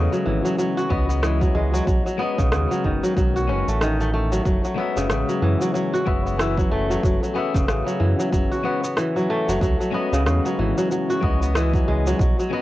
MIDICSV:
0, 0, Header, 1, 5, 480
1, 0, Start_track
1, 0, Tempo, 645161
1, 1394, Time_signature, 4, 2, 24, 8
1, 9387, End_track
2, 0, Start_track
2, 0, Title_t, "Clean electric guitar"
2, 0, Program_c, 0, 27
2, 0, Note_on_c, 0, 56, 96
2, 0, Note_on_c, 0, 61, 86
2, 0, Note_on_c, 0, 66, 85
2, 0, Note_on_c, 0, 71, 84
2, 0, Note_on_c, 0, 75, 108
2, 641, Note_off_c, 0, 56, 0
2, 646, Note_off_c, 0, 61, 0
2, 648, Note_off_c, 0, 66, 0
2, 654, Note_off_c, 0, 71, 0
2, 656, Note_off_c, 0, 75, 0
2, 666, Note_on_c, 0, 56, 88
2, 672, Note_on_c, 0, 61, 76
2, 676, Note_on_c, 0, 66, 79
2, 679, Note_on_c, 0, 71, 77
2, 685, Note_on_c, 0, 75, 82
2, 886, Note_off_c, 0, 56, 0
2, 887, Note_off_c, 0, 61, 0
2, 891, Note_off_c, 0, 66, 0
2, 893, Note_off_c, 0, 71, 0
2, 894, Note_off_c, 0, 75, 0
2, 908, Note_on_c, 0, 56, 75
2, 914, Note_on_c, 0, 61, 67
2, 915, Note_on_c, 0, 66, 74
2, 920, Note_on_c, 0, 71, 72
2, 926, Note_on_c, 0, 75, 79
2, 1379, Note_off_c, 0, 56, 0
2, 1380, Note_off_c, 0, 61, 0
2, 1382, Note_off_c, 0, 66, 0
2, 1385, Note_off_c, 0, 71, 0
2, 1386, Note_off_c, 0, 75, 0
2, 1621, Note_on_c, 0, 56, 85
2, 1629, Note_on_c, 0, 61, 73
2, 1633, Note_on_c, 0, 66, 79
2, 1642, Note_on_c, 0, 71, 79
2, 1650, Note_on_c, 0, 75, 93
2, 2563, Note_off_c, 0, 56, 0
2, 2567, Note_off_c, 0, 61, 0
2, 2569, Note_off_c, 0, 66, 0
2, 2574, Note_off_c, 0, 71, 0
2, 2578, Note_off_c, 0, 75, 0
2, 2585, Note_on_c, 0, 56, 86
2, 2589, Note_on_c, 0, 61, 79
2, 2595, Note_on_c, 0, 66, 66
2, 2597, Note_on_c, 0, 71, 72
2, 2602, Note_on_c, 0, 78, 76
2, 2723, Note_off_c, 0, 56, 0
2, 2725, Note_off_c, 0, 61, 0
2, 2726, Note_off_c, 0, 66, 0
2, 2729, Note_off_c, 0, 71, 0
2, 2729, Note_off_c, 0, 78, 0
2, 3540, Note_on_c, 0, 56, 93
2, 3547, Note_on_c, 0, 61, 87
2, 3554, Note_on_c, 0, 66, 82
2, 3562, Note_on_c, 0, 71, 86
2, 3569, Note_on_c, 0, 76, 98
2, 4482, Note_off_c, 0, 56, 0
2, 4486, Note_off_c, 0, 61, 0
2, 4490, Note_off_c, 0, 66, 0
2, 4494, Note_off_c, 0, 71, 0
2, 4497, Note_off_c, 0, 76, 0
2, 4507, Note_on_c, 0, 56, 85
2, 4510, Note_on_c, 0, 61, 80
2, 4515, Note_on_c, 0, 66, 71
2, 4519, Note_on_c, 0, 71, 78
2, 4523, Note_on_c, 0, 76, 95
2, 4726, Note_off_c, 0, 56, 0
2, 4728, Note_off_c, 0, 61, 0
2, 4729, Note_off_c, 0, 66, 0
2, 4732, Note_off_c, 0, 71, 0
2, 4734, Note_off_c, 0, 76, 0
2, 4742, Note_on_c, 0, 68, 76
2, 4750, Note_on_c, 0, 61, 72
2, 4758, Note_on_c, 0, 66, 73
2, 4765, Note_on_c, 0, 71, 69
2, 4772, Note_on_c, 0, 76, 90
2, 5444, Note_off_c, 0, 68, 0
2, 5447, Note_off_c, 0, 61, 0
2, 5452, Note_off_c, 0, 66, 0
2, 5455, Note_off_c, 0, 71, 0
2, 5459, Note_off_c, 0, 76, 0
2, 5461, Note_on_c, 0, 68, 84
2, 5468, Note_on_c, 0, 61, 79
2, 5474, Note_on_c, 0, 66, 81
2, 5484, Note_on_c, 0, 71, 80
2, 5491, Note_on_c, 0, 76, 94
2, 6403, Note_off_c, 0, 68, 0
2, 6406, Note_off_c, 0, 61, 0
2, 6410, Note_off_c, 0, 66, 0
2, 6414, Note_off_c, 0, 71, 0
2, 6418, Note_off_c, 0, 76, 0
2, 6424, Note_on_c, 0, 56, 83
2, 6428, Note_on_c, 0, 61, 78
2, 6434, Note_on_c, 0, 66, 69
2, 6436, Note_on_c, 0, 71, 80
2, 6442, Note_on_c, 0, 78, 92
2, 6562, Note_off_c, 0, 56, 0
2, 6565, Note_off_c, 0, 61, 0
2, 6566, Note_off_c, 0, 66, 0
2, 6568, Note_off_c, 0, 71, 0
2, 6571, Note_off_c, 0, 78, 0
2, 7377, Note_on_c, 0, 56, 97
2, 7383, Note_on_c, 0, 61, 90
2, 7390, Note_on_c, 0, 66, 88
2, 7398, Note_on_c, 0, 71, 87
2, 7406, Note_on_c, 0, 75, 102
2, 8321, Note_off_c, 0, 56, 0
2, 8324, Note_off_c, 0, 61, 0
2, 8328, Note_off_c, 0, 66, 0
2, 8332, Note_off_c, 0, 71, 0
2, 8335, Note_off_c, 0, 75, 0
2, 8341, Note_on_c, 0, 56, 83
2, 8346, Note_on_c, 0, 61, 74
2, 8349, Note_on_c, 0, 66, 82
2, 8354, Note_on_c, 0, 71, 81
2, 8358, Note_on_c, 0, 75, 100
2, 8564, Note_off_c, 0, 56, 0
2, 8564, Note_off_c, 0, 61, 0
2, 8567, Note_off_c, 0, 66, 0
2, 8570, Note_off_c, 0, 71, 0
2, 8571, Note_off_c, 0, 75, 0
2, 8586, Note_on_c, 0, 56, 81
2, 8590, Note_on_c, 0, 61, 73
2, 8592, Note_on_c, 0, 66, 72
2, 8598, Note_on_c, 0, 71, 57
2, 8601, Note_on_c, 0, 75, 85
2, 9058, Note_off_c, 0, 56, 0
2, 9059, Note_off_c, 0, 61, 0
2, 9061, Note_off_c, 0, 66, 0
2, 9062, Note_off_c, 0, 71, 0
2, 9065, Note_off_c, 0, 75, 0
2, 9300, Note_on_c, 0, 56, 91
2, 9306, Note_on_c, 0, 61, 78
2, 9314, Note_on_c, 0, 66, 77
2, 9323, Note_on_c, 0, 71, 77
2, 9331, Note_on_c, 0, 75, 101
2, 9387, Note_off_c, 0, 56, 0
2, 9387, Note_off_c, 0, 61, 0
2, 9387, Note_off_c, 0, 66, 0
2, 9387, Note_off_c, 0, 71, 0
2, 9387, Note_off_c, 0, 75, 0
2, 9387, End_track
3, 0, Start_track
3, 0, Title_t, "Kora"
3, 0, Program_c, 1, 46
3, 0, Note_on_c, 1, 49, 86
3, 0, Note_on_c, 1, 57, 92
3, 0, Note_on_c, 1, 59, 91
3, 92, Note_on_c, 1, 54, 70
3, 191, Note_on_c, 1, 52, 69
3, 323, Note_off_c, 1, 54, 0
3, 332, Note_on_c, 1, 54, 78
3, 425, Note_off_c, 1, 54, 0
3, 434, Note_on_c, 1, 54, 86
3, 573, Note_on_c, 1, 66, 104
3, 669, Note_off_c, 1, 59, 0
3, 672, Note_on_c, 1, 59, 93
3, 721, Note_off_c, 1, 57, 0
3, 807, Note_off_c, 1, 59, 0
3, 810, Note_on_c, 1, 59, 76
3, 906, Note_off_c, 1, 52, 0
3, 915, Note_on_c, 1, 52, 81
3, 1045, Note_off_c, 1, 54, 0
3, 1054, Note_on_c, 1, 54, 74
3, 1151, Note_on_c, 1, 56, 90
3, 1282, Note_off_c, 1, 54, 0
3, 1291, Note_on_c, 1, 54, 89
3, 1384, Note_off_c, 1, 54, 0
3, 1393, Note_on_c, 1, 54, 76
3, 1430, Note_off_c, 1, 49, 0
3, 1430, Note_off_c, 1, 52, 0
3, 1430, Note_off_c, 1, 56, 0
3, 1523, Note_off_c, 1, 54, 0
3, 1532, Note_on_c, 1, 54, 67
3, 1626, Note_off_c, 1, 59, 0
3, 1629, Note_on_c, 1, 59, 99
3, 1661, Note_off_c, 1, 66, 0
3, 1772, Note_on_c, 1, 49, 89
3, 1791, Note_off_c, 1, 54, 0
3, 1865, Note_off_c, 1, 49, 0
3, 1874, Note_on_c, 1, 49, 80
3, 2015, Note_on_c, 1, 54, 72
3, 2117, Note_on_c, 1, 51, 69
3, 2150, Note_off_c, 1, 49, 0
3, 2150, Note_off_c, 1, 54, 0
3, 2255, Note_on_c, 1, 54, 74
3, 2345, Note_off_c, 1, 54, 0
3, 2354, Note_on_c, 1, 54, 82
3, 2497, Note_on_c, 1, 66, 93
3, 2597, Note_on_c, 1, 61, 71
3, 2740, Note_on_c, 1, 57, 67
3, 2832, Note_off_c, 1, 51, 0
3, 2841, Note_on_c, 1, 51, 77
3, 2871, Note_off_c, 1, 54, 0
3, 2976, Note_off_c, 1, 57, 0
3, 2979, Note_on_c, 1, 57, 71
3, 3015, Note_off_c, 1, 59, 0
3, 3073, Note_off_c, 1, 57, 0
3, 3076, Note_on_c, 1, 57, 69
3, 3213, Note_on_c, 1, 54, 73
3, 3305, Note_off_c, 1, 54, 0
3, 3314, Note_on_c, 1, 54, 74
3, 3351, Note_off_c, 1, 51, 0
3, 3448, Note_off_c, 1, 54, 0
3, 3457, Note_on_c, 1, 54, 72
3, 3555, Note_on_c, 1, 59, 90
3, 3585, Note_off_c, 1, 66, 0
3, 3697, Note_on_c, 1, 49, 91
3, 3710, Note_off_c, 1, 54, 0
3, 3790, Note_off_c, 1, 49, 0
3, 3799, Note_on_c, 1, 49, 78
3, 3890, Note_off_c, 1, 61, 0
3, 3935, Note_on_c, 1, 54, 70
3, 4035, Note_on_c, 1, 52, 68
3, 4169, Note_off_c, 1, 54, 0
3, 4177, Note_on_c, 1, 54, 75
3, 4263, Note_off_c, 1, 54, 0
3, 4272, Note_on_c, 1, 54, 74
3, 4417, Note_on_c, 1, 66, 95
3, 4513, Note_off_c, 1, 59, 0
3, 4516, Note_on_c, 1, 59, 94
3, 4562, Note_off_c, 1, 57, 0
3, 4655, Note_off_c, 1, 59, 0
3, 4658, Note_on_c, 1, 59, 73
3, 4751, Note_off_c, 1, 52, 0
3, 4759, Note_on_c, 1, 52, 85
3, 4889, Note_off_c, 1, 54, 0
3, 4898, Note_on_c, 1, 54, 74
3, 4997, Note_on_c, 1, 57, 91
3, 5128, Note_off_c, 1, 54, 0
3, 5137, Note_on_c, 1, 54, 91
3, 5233, Note_off_c, 1, 54, 0
3, 5242, Note_on_c, 1, 54, 81
3, 5369, Note_off_c, 1, 54, 0
3, 5378, Note_on_c, 1, 54, 64
3, 5469, Note_off_c, 1, 59, 0
3, 5472, Note_on_c, 1, 59, 96
3, 5504, Note_off_c, 1, 66, 0
3, 5540, Note_off_c, 1, 49, 0
3, 5615, Note_on_c, 1, 49, 87
3, 5631, Note_off_c, 1, 52, 0
3, 5631, Note_off_c, 1, 54, 0
3, 5707, Note_off_c, 1, 49, 0
3, 5716, Note_on_c, 1, 49, 81
3, 5851, Note_on_c, 1, 54, 71
3, 5950, Note_on_c, 1, 52, 70
3, 6086, Note_off_c, 1, 54, 0
3, 6095, Note_on_c, 1, 54, 75
3, 6184, Note_off_c, 1, 54, 0
3, 6193, Note_on_c, 1, 54, 82
3, 6334, Note_on_c, 1, 66, 93
3, 6431, Note_off_c, 1, 59, 0
3, 6434, Note_on_c, 1, 59, 94
3, 6483, Note_off_c, 1, 57, 0
3, 6573, Note_off_c, 1, 59, 0
3, 6576, Note_on_c, 1, 59, 71
3, 6666, Note_off_c, 1, 52, 0
3, 6675, Note_on_c, 1, 52, 78
3, 6805, Note_off_c, 1, 54, 0
3, 6814, Note_on_c, 1, 54, 75
3, 6918, Note_on_c, 1, 57, 97
3, 7051, Note_off_c, 1, 54, 0
3, 7060, Note_on_c, 1, 54, 93
3, 7150, Note_off_c, 1, 54, 0
3, 7159, Note_on_c, 1, 54, 86
3, 7190, Note_off_c, 1, 52, 0
3, 7191, Note_off_c, 1, 49, 0
3, 7285, Note_off_c, 1, 54, 0
3, 7294, Note_on_c, 1, 54, 70
3, 7392, Note_off_c, 1, 59, 0
3, 7395, Note_on_c, 1, 59, 91
3, 7422, Note_off_c, 1, 66, 0
3, 7538, Note_on_c, 1, 49, 94
3, 7551, Note_off_c, 1, 54, 0
3, 7628, Note_off_c, 1, 49, 0
3, 7637, Note_on_c, 1, 49, 82
3, 7777, Note_on_c, 1, 54, 72
3, 7878, Note_on_c, 1, 52, 69
3, 8009, Note_off_c, 1, 54, 0
3, 8018, Note_on_c, 1, 54, 70
3, 8113, Note_off_c, 1, 54, 0
3, 8122, Note_on_c, 1, 54, 81
3, 8257, Note_on_c, 1, 66, 91
3, 8357, Note_off_c, 1, 59, 0
3, 8360, Note_on_c, 1, 59, 88
3, 8404, Note_off_c, 1, 57, 0
3, 8498, Note_off_c, 1, 59, 0
3, 8501, Note_on_c, 1, 59, 78
3, 8594, Note_off_c, 1, 52, 0
3, 8602, Note_on_c, 1, 52, 86
3, 8731, Note_off_c, 1, 54, 0
3, 8740, Note_on_c, 1, 54, 74
3, 8839, Note_on_c, 1, 56, 89
3, 8972, Note_off_c, 1, 54, 0
3, 8981, Note_on_c, 1, 54, 91
3, 9073, Note_off_c, 1, 54, 0
3, 9082, Note_on_c, 1, 54, 82
3, 9111, Note_off_c, 1, 49, 0
3, 9111, Note_off_c, 1, 52, 0
3, 9111, Note_off_c, 1, 56, 0
3, 9212, Note_off_c, 1, 54, 0
3, 9221, Note_on_c, 1, 54, 67
3, 9317, Note_off_c, 1, 59, 0
3, 9320, Note_on_c, 1, 59, 90
3, 9344, Note_off_c, 1, 66, 0
3, 9387, Note_off_c, 1, 54, 0
3, 9387, Note_off_c, 1, 59, 0
3, 9387, End_track
4, 0, Start_track
4, 0, Title_t, "Analog synth bass"
4, 0, Program_c, 2, 38
4, 195, Note_on_c, 2, 32, 87
4, 301, Note_off_c, 2, 32, 0
4, 672, Note_on_c, 2, 37, 91
4, 1115, Note_off_c, 2, 37, 0
4, 1151, Note_on_c, 2, 37, 95
4, 1344, Note_off_c, 2, 37, 0
4, 1392, Note_on_c, 2, 35, 96
4, 1499, Note_off_c, 2, 35, 0
4, 1773, Note_on_c, 2, 35, 93
4, 1875, Note_on_c, 2, 39, 101
4, 1886, Note_off_c, 2, 35, 0
4, 1980, Note_off_c, 2, 39, 0
4, 2116, Note_on_c, 2, 30, 89
4, 2221, Note_off_c, 2, 30, 0
4, 2355, Note_on_c, 2, 35, 88
4, 2595, Note_on_c, 2, 30, 89
4, 2606, Note_off_c, 2, 35, 0
4, 2701, Note_off_c, 2, 30, 0
4, 2733, Note_on_c, 2, 33, 98
4, 3275, Note_off_c, 2, 33, 0
4, 3316, Note_on_c, 2, 30, 96
4, 3421, Note_off_c, 2, 30, 0
4, 3692, Note_on_c, 2, 30, 88
4, 3793, Note_on_c, 2, 33, 101
4, 3804, Note_off_c, 2, 30, 0
4, 3900, Note_off_c, 2, 33, 0
4, 4033, Note_on_c, 2, 42, 92
4, 4140, Note_off_c, 2, 42, 0
4, 4516, Note_on_c, 2, 30, 96
4, 4956, Note_off_c, 2, 30, 0
4, 4991, Note_on_c, 2, 30, 96
4, 5185, Note_off_c, 2, 30, 0
4, 5234, Note_on_c, 2, 30, 96
4, 5340, Note_off_c, 2, 30, 0
4, 5613, Note_on_c, 2, 30, 82
4, 5712, Note_on_c, 2, 33, 102
4, 5723, Note_off_c, 2, 30, 0
4, 5819, Note_off_c, 2, 33, 0
4, 5953, Note_on_c, 2, 42, 91
4, 6060, Note_off_c, 2, 42, 0
4, 6194, Note_on_c, 2, 30, 84
4, 6300, Note_off_c, 2, 30, 0
4, 7053, Note_on_c, 2, 30, 81
4, 7129, Note_off_c, 2, 30, 0
4, 7154, Note_on_c, 2, 37, 98
4, 7260, Note_off_c, 2, 37, 0
4, 7532, Note_on_c, 2, 37, 90
4, 7627, Note_on_c, 2, 40, 96
4, 7638, Note_off_c, 2, 37, 0
4, 7737, Note_off_c, 2, 40, 0
4, 7875, Note_on_c, 2, 32, 93
4, 7981, Note_off_c, 2, 32, 0
4, 8353, Note_on_c, 2, 37, 92
4, 8795, Note_off_c, 2, 37, 0
4, 8838, Note_on_c, 2, 37, 101
4, 9028, Note_off_c, 2, 37, 0
4, 9074, Note_on_c, 2, 35, 99
4, 9180, Note_off_c, 2, 35, 0
4, 9387, End_track
5, 0, Start_track
5, 0, Title_t, "Drums"
5, 98, Note_on_c, 9, 82, 32
5, 172, Note_off_c, 9, 82, 0
5, 340, Note_on_c, 9, 82, 60
5, 414, Note_off_c, 9, 82, 0
5, 439, Note_on_c, 9, 82, 52
5, 513, Note_off_c, 9, 82, 0
5, 581, Note_on_c, 9, 82, 30
5, 655, Note_off_c, 9, 82, 0
5, 671, Note_on_c, 9, 36, 90
5, 746, Note_off_c, 9, 36, 0
5, 820, Note_on_c, 9, 82, 60
5, 894, Note_off_c, 9, 82, 0
5, 914, Note_on_c, 9, 37, 95
5, 920, Note_on_c, 9, 82, 47
5, 989, Note_off_c, 9, 37, 0
5, 995, Note_off_c, 9, 82, 0
5, 1052, Note_on_c, 9, 36, 95
5, 1058, Note_on_c, 9, 82, 28
5, 1126, Note_off_c, 9, 36, 0
5, 1133, Note_off_c, 9, 82, 0
5, 1299, Note_on_c, 9, 82, 63
5, 1373, Note_off_c, 9, 82, 0
5, 1392, Note_on_c, 9, 36, 114
5, 1399, Note_on_c, 9, 82, 52
5, 1467, Note_off_c, 9, 36, 0
5, 1473, Note_off_c, 9, 82, 0
5, 1539, Note_on_c, 9, 82, 31
5, 1614, Note_off_c, 9, 82, 0
5, 1773, Note_on_c, 9, 36, 94
5, 1779, Note_on_c, 9, 82, 66
5, 1847, Note_off_c, 9, 36, 0
5, 1854, Note_off_c, 9, 82, 0
5, 1873, Note_on_c, 9, 37, 97
5, 1879, Note_on_c, 9, 82, 50
5, 1948, Note_off_c, 9, 37, 0
5, 1954, Note_off_c, 9, 82, 0
5, 2018, Note_on_c, 9, 82, 32
5, 2093, Note_off_c, 9, 82, 0
5, 2114, Note_on_c, 9, 36, 53
5, 2188, Note_off_c, 9, 36, 0
5, 2260, Note_on_c, 9, 82, 58
5, 2334, Note_off_c, 9, 82, 0
5, 2354, Note_on_c, 9, 36, 101
5, 2361, Note_on_c, 9, 82, 52
5, 2428, Note_off_c, 9, 36, 0
5, 2436, Note_off_c, 9, 82, 0
5, 2501, Note_on_c, 9, 82, 30
5, 2576, Note_off_c, 9, 82, 0
5, 2740, Note_on_c, 9, 82, 63
5, 2815, Note_off_c, 9, 82, 0
5, 2835, Note_on_c, 9, 37, 99
5, 2841, Note_on_c, 9, 82, 51
5, 2909, Note_off_c, 9, 37, 0
5, 2915, Note_off_c, 9, 82, 0
5, 2980, Note_on_c, 9, 82, 29
5, 3054, Note_off_c, 9, 82, 0
5, 3218, Note_on_c, 9, 82, 64
5, 3293, Note_off_c, 9, 82, 0
5, 3314, Note_on_c, 9, 36, 120
5, 3319, Note_on_c, 9, 82, 50
5, 3389, Note_off_c, 9, 36, 0
5, 3393, Note_off_c, 9, 82, 0
5, 3458, Note_on_c, 9, 82, 31
5, 3533, Note_off_c, 9, 82, 0
5, 3699, Note_on_c, 9, 82, 63
5, 3773, Note_off_c, 9, 82, 0
5, 3793, Note_on_c, 9, 37, 102
5, 3799, Note_on_c, 9, 82, 50
5, 3867, Note_off_c, 9, 37, 0
5, 3873, Note_off_c, 9, 82, 0
5, 3939, Note_on_c, 9, 82, 34
5, 4013, Note_off_c, 9, 82, 0
5, 4180, Note_on_c, 9, 82, 63
5, 4254, Note_off_c, 9, 82, 0
5, 4283, Note_on_c, 9, 82, 53
5, 4357, Note_off_c, 9, 82, 0
5, 4425, Note_on_c, 9, 82, 31
5, 4500, Note_off_c, 9, 82, 0
5, 4514, Note_on_c, 9, 36, 97
5, 4588, Note_off_c, 9, 36, 0
5, 4665, Note_on_c, 9, 82, 64
5, 4739, Note_off_c, 9, 82, 0
5, 4757, Note_on_c, 9, 37, 98
5, 4764, Note_on_c, 9, 82, 53
5, 4832, Note_off_c, 9, 37, 0
5, 4838, Note_off_c, 9, 82, 0
5, 4893, Note_on_c, 9, 36, 103
5, 4906, Note_on_c, 9, 82, 28
5, 4967, Note_off_c, 9, 36, 0
5, 4980, Note_off_c, 9, 82, 0
5, 5143, Note_on_c, 9, 82, 63
5, 5217, Note_off_c, 9, 82, 0
5, 5233, Note_on_c, 9, 36, 122
5, 5245, Note_on_c, 9, 82, 54
5, 5308, Note_off_c, 9, 36, 0
5, 5319, Note_off_c, 9, 82, 0
5, 5384, Note_on_c, 9, 82, 33
5, 5458, Note_off_c, 9, 82, 0
5, 5613, Note_on_c, 9, 36, 102
5, 5622, Note_on_c, 9, 82, 65
5, 5687, Note_off_c, 9, 36, 0
5, 5697, Note_off_c, 9, 82, 0
5, 5716, Note_on_c, 9, 37, 95
5, 5722, Note_on_c, 9, 82, 53
5, 5790, Note_off_c, 9, 37, 0
5, 5796, Note_off_c, 9, 82, 0
5, 5860, Note_on_c, 9, 82, 35
5, 5935, Note_off_c, 9, 82, 0
5, 6100, Note_on_c, 9, 82, 64
5, 6175, Note_off_c, 9, 82, 0
5, 6193, Note_on_c, 9, 36, 107
5, 6199, Note_on_c, 9, 82, 55
5, 6267, Note_off_c, 9, 36, 0
5, 6273, Note_off_c, 9, 82, 0
5, 6340, Note_on_c, 9, 82, 32
5, 6415, Note_off_c, 9, 82, 0
5, 6578, Note_on_c, 9, 82, 71
5, 6652, Note_off_c, 9, 82, 0
5, 6672, Note_on_c, 9, 37, 97
5, 6678, Note_on_c, 9, 82, 56
5, 6746, Note_off_c, 9, 37, 0
5, 6752, Note_off_c, 9, 82, 0
5, 6820, Note_on_c, 9, 82, 28
5, 6894, Note_off_c, 9, 82, 0
5, 7061, Note_on_c, 9, 82, 66
5, 7135, Note_off_c, 9, 82, 0
5, 7153, Note_on_c, 9, 36, 119
5, 7162, Note_on_c, 9, 82, 55
5, 7227, Note_off_c, 9, 36, 0
5, 7236, Note_off_c, 9, 82, 0
5, 7301, Note_on_c, 9, 82, 31
5, 7375, Note_off_c, 9, 82, 0
5, 7541, Note_on_c, 9, 82, 68
5, 7615, Note_off_c, 9, 82, 0
5, 7636, Note_on_c, 9, 37, 94
5, 7642, Note_on_c, 9, 82, 53
5, 7710, Note_off_c, 9, 37, 0
5, 7716, Note_off_c, 9, 82, 0
5, 7781, Note_on_c, 9, 82, 35
5, 7855, Note_off_c, 9, 82, 0
5, 8020, Note_on_c, 9, 82, 66
5, 8095, Note_off_c, 9, 82, 0
5, 8122, Note_on_c, 9, 82, 57
5, 8196, Note_off_c, 9, 82, 0
5, 8260, Note_on_c, 9, 82, 33
5, 8335, Note_off_c, 9, 82, 0
5, 8352, Note_on_c, 9, 36, 108
5, 8427, Note_off_c, 9, 36, 0
5, 8499, Note_on_c, 9, 82, 66
5, 8573, Note_off_c, 9, 82, 0
5, 8595, Note_on_c, 9, 37, 101
5, 8601, Note_on_c, 9, 82, 57
5, 8670, Note_off_c, 9, 37, 0
5, 8676, Note_off_c, 9, 82, 0
5, 8732, Note_on_c, 9, 36, 104
5, 8742, Note_on_c, 9, 82, 30
5, 8806, Note_off_c, 9, 36, 0
5, 8816, Note_off_c, 9, 82, 0
5, 8979, Note_on_c, 9, 82, 71
5, 9054, Note_off_c, 9, 82, 0
5, 9072, Note_on_c, 9, 36, 127
5, 9082, Note_on_c, 9, 82, 52
5, 9146, Note_off_c, 9, 36, 0
5, 9156, Note_off_c, 9, 82, 0
5, 9221, Note_on_c, 9, 82, 32
5, 9296, Note_off_c, 9, 82, 0
5, 9387, End_track
0, 0, End_of_file